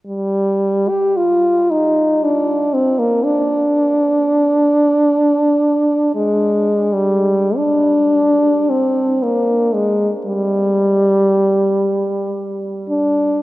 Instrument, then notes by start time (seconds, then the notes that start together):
french horn
0.06 G3
0.89 G4
1.17 F4
1.71 D#4
2.24 D4
2.74 C4
2.99 A#3
3.24 D4
6.15 G#3
6.93 G3
7.57 D4
8.70 C4
9.23 A#3
9.73 G#3
10.26 G3
12.90 D4